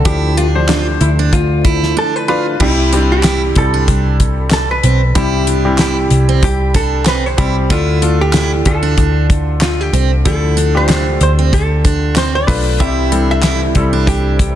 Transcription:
Already playing: D3 F3 A3 D4 F4 A4
0.05 D2 F3 D4 E4 G4, kick, closed hi-hat
0.37 D4 F4, closed hi-hat
0.55 F3 D4 C5
0.69 D4 F4, snare, clap, closed hi-hat
1.01 D2 E4, closed hi-hat
1.19 D4
1.33 D2 F4, kick, closed hi-hat
1.65 E4, kick, closed hi-hat
1.83 snare
1.97 D4 A4
2.16 B4
2.28 D4 F4 B4
2.60 C2 C3 G3 C4 E4 G4, kick, crash
2.93 G3 C4 D4 E4 G4, closed hi-hat
3.12 G4
3.23 E4, snare, clap, closed hi-hat
3.56 C2 G3 C4 E4 A4, kick, closed hi-hat
3.74 D4
3.88 C2, kick, closed hi-hat
4.20 kick, closed hi-hat
4.51 A4, snare, clap, closed hi-hat
4.71 B4
4.83 B1 C4, closed hi-hat
5.15 C2 C3 G3 C4 E4 G4, kick, closed hi-hat
5.47 D4, closed hi-hat
5.65 G3 C4 E4 G4
5.78 E4 G4, snare, clap, closed hi-hat
6.10 C2, closed hi-hat
6.29 C4
6.43 C2 G4, kick, closed hi-hat
6.74 D4 A4, kick, closed hi-hat
7.06 C4 B4, snare, clap, closed hi-hat
7.26 C5
7.37 C2 G3 C4 E4 G4, kick, closed hi-hat
7.70 D2 D3 A3 D4 E4 F4 A4, kick, closed hi-hat
8.02 A3 D4 F4 A4, closed hi-hat
8.21 G4
8.33 E4, snare, clap, closed hi-hat
8.65 D2 A3 D4 F4 A4, kick, closed hi-hat
8.83 D4
8.97 D2, kick, closed hi-hat
9.30 kick, closed hi-hat
9.61 F4, snare, clap, closed hi-hat
9.81 G4
9.93 C2 C4, closed hi-hat
10.25 D2 D3 F3 A3 D4 E4 A4, kick, closed hi-hat
10.57 D4, closed hi-hat
10.75 A3 D4 F4 G4 C5
10.88 D4, snare, clap, closed hi-hat
11.21 D2 C5, closed hi-hat
11.39 C4
11.53 D2 A4, kick, closed hi-hat
11.85 D4, kick, closed hi-hat
12.16 C4 C5, snare, clap, closed hi-hat
12.35 D5
12.47 B1 A3 D4 F4 B4, kick, open hi-hat
12.79 C2 C3 E3 G3 C4 E4 G4 E5, kick, closed hi-hat
13.11 G3 C4 D4 E4 A4, closed hi-hat
13.31 E5
13.43 E4, snare, clap, closed hi-hat
13.75 C2 G3 C4 E4 A4, kick, closed hi-hat
13.93 D4
14.07 C2 G4, kick, closed hi-hat
14.39 kick, closed hi-hat

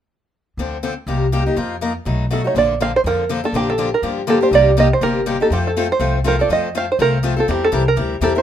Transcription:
0.57 D2 D3 F3 C4 D4 A4
0.83 D3 F3 C4 D4 A4
1.07 C2 C3 G3 A#3 D#4 G4
1.32 C3 G3 A#3 D#4 G4
1.46 A#3 D#4 G4
1.56 F2 F3 A#3 D#4 F4 A#4
1.81 F3 A#3 D#4 F4 A#4
2.05 B1 B2 F#3 A3 D#4 F#4
2.30 B2 F#3 A3 D#4 F#4 A4
2.44 A3 D#4 F#4 C#5
2.55 A#1 D3 F3 A#3 D4 A4 D5
2.80 D3 F3 A#3 D4 A4 F5
2.96 C5
3.04 F2 D3 F3 A#3 D4 A4 A#4
3.29 D3 F3 A#3 D4 A4
3.44 A#3 D4 A4
3.52 A#1 D3 F3 A#3 D4 G4
3.70 A4
3.78 D3 F3 A#3 D4 G4
3.94 A#4
4.02 G2 D3 F3 A#3 D4 G4
4.27 D3 F3 A#3 D4 G4 A4
4.41 A#3 D4 G4 C5
4.51 C2 C3 G3 A#3 D#4 G4 D5
4.77 C3 G3 A#3 D#4 G4 D#5
4.93 C5
5.01 G1 C3 G3 A#3 D#4 G4 A#4
5.26 C3 G3 A#3 D#4 G4
5.40 A#3 D#4 G4 A4
5.50 F2 F3 A3 C4 F4 G4 A4
5.67 A4
5.76 F3 A3 C4 F4 A4
5.92 C5
6.00 C2 F3 A3 C4 F4 A4
6.24 F3 A3 C4 F4 A4 A#4
6.39 C4 F4 A4 D5
6.49 F2 F3 A3 C4 F4 A4 D#5
6.75 F3 A3 C4 F4 A4 F5
6.92 C5
6.99 C2 F3 A3 C4 F4 A4 A#4
7.23 F3 A3 C4 F4 A4
7.36 C4 F4 A4
7.48 E2 E3 G3 C4 E4 G4 A#4
7.65 A4
7.72 C2 E3 G3 C4 E4 A#4
7.88 A#4
7.96 D2 E3 G3 C4 E4 A#4
8.21 E2 E3 G3 C4 E4 A4 A#4
8.35 C4 E4 A#4 C5

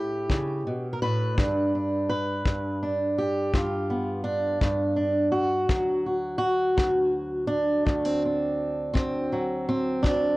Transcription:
Already playing: A2 E4 G4
0.30 C#3, kick
0.67 B2
0.93 A#4
1.02 A2 B4
1.38 G2 D4, kick
1.75 D4
2.10 B4
2.46 G2, kick
2.83 D4
3.18 G4
3.54 G2 F4, kick
3.90 B3
4.24 D4
4.61 G2, kick
4.96 D4
5.32 F#4
5.69 D2 F#3, kick
6.06 F#4
6.38 F#4
6.77 D2, kick
7.47 D4
7.85 D2 A3, kick
8.05 C4
8.25 C4
8.93 D2 C4, kick
9.32 F#3
9.69 C4
10.03 D2 D4, kick

